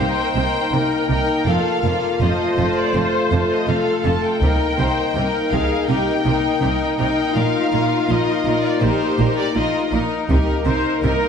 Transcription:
Already playing: A#3 D#4 C5
0.00 D#4 A#4 G5
0.35 C2 C3 D#4 A#4
0.72 C2 C3 D#4 A#4
1.09 C2 C3 D#4 A#4 G5
1.46 F1 F2 F4 A4 F5
1.83 F1 F2 A#3 F4 A4
2.20 F1 F2 A3 F4 A4 C5 D#5
2.58 F1 F2 F4 A4
2.77 D5
2.94 F1 F2 F4 A4 C5
3.32 F1 F2 F4 A4
3.51 D#5
3.68 F1 F2 F4 A4 F5
4.04 F1 F2 F4 A4 A5
4.24 G5
4.41 C2 C3 A#3 D#4 A#4, taiko
4.76 C2 C3 D#4 A#4 C5
5.13 C2 C3 D#4 A#4
5.49 C2 C3 D#4 A#4 F5, taiko
5.54 G#4
5.85 C2 C3 D#4 A#4 G5
5.91 G4
6.24 C2 C3 D#4 A#4
6.61 C2 C3 D#4 A#4
6.98 C2 C3 D#4 A#4 G5
7.35 A#1 A#2 D#4 F4 A#4 F5
7.72 A#1 A#2 D#4 A#4
8.08 A#1 A#2 D#4 A#4 D#5
8.45 A#1 A#2 D#4 A#4
8.64 D5
8.81 A#1 A#2 D#4 G4 A#4 C5
9.19 A#1 A#2 D#4 A#4
9.37 D5
9.55 A#1 A#2 D#4 F4 A#4 D#5
9.92 A#1 A#2 D#4 A#4
10.29 C2 C3 A#3 D#4 G4 A#4, taiko
10.65 C2 C3 D#4 A#4 C5
11.02 C2 C3 D#4 A#4

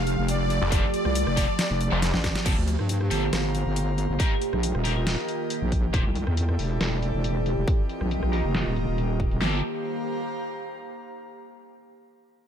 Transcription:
Already playing: F1 F3 A3 G4 F5
0.07 closed hi-hat
0.18 F1
0.28 D5, closed hi-hat
0.50 closed hi-hat
0.62 F1
0.72 F4 G4 A4, kick, closed hi-hat
0.94 D5, closed hi-hat
1.05 C2, cross-stick
1.15 closed hi-hat
1.27 F1, cross-stick
1.37 F4 G4 A4, kick, open hi-hat
1.59 snare, closed hi-hat
1.70 F1
1.81 closed hi-hat
1.92 F1 F4 G4 A4
2.02 snare, closed hi-hat
2.14 A1, snare
2.24 kick, snare, closed hi-hat
2.36 snare, closed hi-hat
2.46 G1 A#2 A3 A#3 G4 A4, kick, closed hi-hat, crash
2.55 D2 C5
2.68 closed hi-hat
2.79 G2, cross-stick
2.85 F5, closed hi-hat
2.96 A#5
3.01 cross-stick
3.11 G1 A#3 G4 A4, open hi-hat
3.33 G1, cross-stick, snare, closed hi-hat
3.55 closed hi-hat
3.66 G1
3.76 closed hi-hat
3.98 closed hi-hat
4.09 G1
4.19 D#3 A#3 D#4 F4 G4 A#4, kick, closed hi-hat
4.30 D#5 G5
4.40 A#4, closed hi-hat
4.53 A#1, cross-stick
4.63 closed hi-hat
4.75 D#1, cross-stick
4.85 D#4 G4 A#4, open hi-hat
5.07 snare, closed hi-hat
5.28 closed hi-hat
5.50 closed hi-hat
5.62 A#1
5.72 kick, closed hi-hat
5.93 E1 E3 C4 E4 G4 C5, kick, closed hi-hat
6.03 C2 A4
6.15 closed hi-hat
6.27 E2 D5, cross-stick
6.37 closed hi-hat
6.49 cross-stick
6.59 E1, open hi-hat
6.81 E1, cross-stick, snare, closed hi-hat
7.02 closed hi-hat
7.14 E1
7.24 closed hi-hat
7.46 closed hi-hat
7.57 E1
7.67 D#3 A#3 F4, kick, closed hi-hat
7.73 D#5
7.89 A#4, closed hi-hat
8.01 A#1, cross-stick
8.11 closed hi-hat
8.23 A#1, cross-stick
8.32 D#4 G4 A#4, open hi-hat
8.44 F1
8.55 snare, closed hi-hat
8.66 D#1
8.76 closed hi-hat
8.88 D#1
8.98 closed hi-hat
9.20 kick, closed hi-hat
9.31 D#1, closed hi-hat
9.41 G1 A#3 G4 A4, snare
9.48 C5
9.55 F5
9.61 A#5

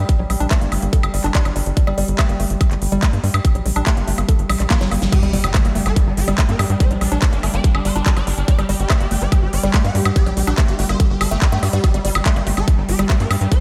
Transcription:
Already playing: G3
0.09 kick, closed hi-hat
0.19 A#1 F#3
0.30 A#1 G3, open hi-hat, high woodblock
0.40 A#1 D4, closed hi-hat
0.51 A3, kick, clap, closed hi-hat
0.61 G1 A#3, closed hi-hat
0.72 G1 A3, open hi-hat, high woodblock
0.82 G1 A#3, closed hi-hat
0.93 A4, kick, closed hi-hat
1.03 G1, closed hi-hat, high woodblock
1.14 G1 G3, open hi-hat
1.24 G1 D4, clap, closed hi-hat
1.35 G3, kick, clap, closed hi-hat
1.45 G1 F#3, closed hi-hat, high woodblock
1.56 G1 G3, open hi-hat
1.66 G1, closed hi-hat
1.77 G3, kick, closed hi-hat
1.87 G1 G3, high woodblock
1.98 G1 G3, open hi-hat
2.08 G1, closed hi-hat
2.19 A3, kick, clap, closed hi-hat, high woodblock
2.29 G1 A#3, closed hi-hat
2.40 G1 A3, open hi-hat
2.50 G1, closed hi-hat
2.61 kick, closed hi-hat, high woodblock
2.71 G1, clap, closed hi-hat
2.82 G1, open hi-hat
2.92 G1 G3, closed hi-hat
3.03 A3, kick, clap, closed hi-hat, high woodblock
3.13 G2 A#3, closed hi-hat
3.24 G2 G3, open hi-hat
3.34 G2, closed hi-hat, high woodblock
3.45 kick, closed hi-hat
3.55 A#1 F#3, closed hi-hat
3.66 A#1 G3, open hi-hat
3.76 A#1 D4, closed hi-hat, high woodblock
3.87 A3, kick, clap, closed hi-hat
3.97 G1 A#3, closed hi-hat
4.08 G1 A3, open hi-hat
4.18 G1 A#3, closed hi-hat, high woodblock
4.29 A4, kick, closed hi-hat
4.39 G1, closed hi-hat
4.50 A#1 G3, open hi-hat, high woodblock
4.60 A#1 G3, clap, closed hi-hat
4.70 A#3, kick, snare, clap, closed hi-hat
4.81 G1 F#3, snare, closed hi-hat
4.91 G1 A#3, open hi-hat, high woodblock
5.02 G1, snare, closed hi-hat
5.12 G3 G4, kick, closed hi-hat, crash, impact, high woodblock
5.23 G1 G3, closed hi-hat
5.33 G1 G3, open hi-hat
5.44 G1 G3, closed hi-hat, high woodblock
5.54 A3, kick, clap, closed hi-hat
5.65 G1 G3 A#3, closed hi-hat
5.75 G1 G3 A3, open hi-hat
5.86 G1 A4, closed hi-hat, high woodblock
5.96 G3, kick, closed hi-hat
6.07 G1 G3
6.17 G1 G4, open hi-hat
6.28 G1 G3, closed hi-hat, high woodblock
6.38 G3 A3, kick, clap, closed hi-hat
6.49 G2 A#3 A#4, closed hi-hat
6.59 G2 G3, open hi-hat, high woodblock
6.70 G2 G3, closed hi-hat
6.80 C5, kick, closed hi-hat
6.91 A#1 F#3 D4, closed hi-hat
7.01 A#1 G3 D4, open hi-hat, high woodblock
7.12 A#1 D4, closed hi-hat
7.22 A3, kick, clap, closed hi-hat
7.33 G1 A#3 D4, closed hi-hat
7.43 G1 A3 D4, open hi-hat, high woodblock
7.54 G1 A#3 D5, closed hi-hat
7.64 D4 A4, kick, closed hi-hat
7.75 G1 D4, high woodblock
7.85 G1 G3 C5, open hi-hat
7.96 G1 D4, closed hi-hat
8.06 G3 D4, kick, clap, closed hi-hat
8.17 G1 F#3 D5, closed hi-hat, high woodblock
8.27 G1 G3 D4, open hi-hat
8.38 G1 D4, closed hi-hat
8.48 G3 D5, kick, closed hi-hat
8.59 G1 G3 G4, closed hi-hat, high woodblock
8.69 G1 G3 G4, open hi-hat
8.80 G1 G4, closed hi-hat
8.90 A3, kick, clap, closed hi-hat, high woodblock
9.01 G1 A#3 G4, closed hi-hat
9.11 G1 A3 G4, open hi-hat
9.21 G1 D5, closed hi-hat
9.32 G4, kick, closed hi-hat, high woodblock
9.42 G1 G4
9.53 G1 D5, open hi-hat
9.63 G1 G3 G4, closed hi-hat
9.74 A3 G4, kick, clap, closed hi-hat, high woodblock
9.84 G2 A#3 F#5, closed hi-hat
9.95 G2 G3 G4, open hi-hat
10.05 G2 G4, closed hi-hat, high woodblock
10.16 D5, kick, closed hi-hat
10.26 A#1 F#3 G4, closed hi-hat
10.37 A#1 G3 G4, open hi-hat
10.47 A#1 D4 G4, closed hi-hat, high woodblock
10.58 A3, kick, clap, closed hi-hat
10.68 G1 A#3 G4, closed hi-hat
10.79 G1 A3 G4, open hi-hat
10.89 G1 A#3 C5, closed hi-hat, high woodblock
11.00 G4 A4, kick, closed hi-hat
11.10 G1 G4
11.21 G1 G4 A4, open hi-hat, high woodblock
11.31 G1 A3 G4, closed hi-hat
11.42 G3 G4, kick, clap, closed hi-hat
11.52 G2 A3 G4, closed hi-hat
11.63 G2 G3 G4, open hi-hat, high woodblock
11.73 G2 G3 G4, closed hi-hat
11.84 G3 G4, kick, closed hi-hat, high woodblock
11.94 G1 G3, closed hi-hat
12.05 G1 G3, open hi-hat
12.15 G1 G3, closed hi-hat, high woodblock
12.26 A3, kick, clap, closed hi-hat
12.36 G1 G3 A#3, closed hi-hat
12.47 G1 G3 A3, open hi-hat
12.57 G1 A4, closed hi-hat, high woodblock
12.68 G3, kick, closed hi-hat
12.78 G1 G3
12.89 G1 G4, open hi-hat
12.99 G1 G3, closed hi-hat, high woodblock
13.10 G3 A3, kick, clap, closed hi-hat
13.20 G2 A#3 A#4, closed hi-hat
13.31 G2 G3, open hi-hat, high woodblock
13.41 G2 G3, closed hi-hat
13.52 C5, kick, closed hi-hat

